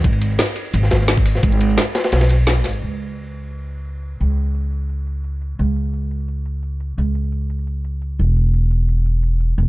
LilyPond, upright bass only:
\new Staff \with { instrumentName = "Upright bass" } { \clef bass \time 4/4 \key gis \phrygian \tempo 4 = 173 gis,,4 r4 gis,,2 | gis,,4 r4 b,,4. gis,,8 | cis,1 | cis,1 |
cis,1 | cis,2.~ cis,8 e,,8~ | e,,2.~ e,,8 e,,8 | }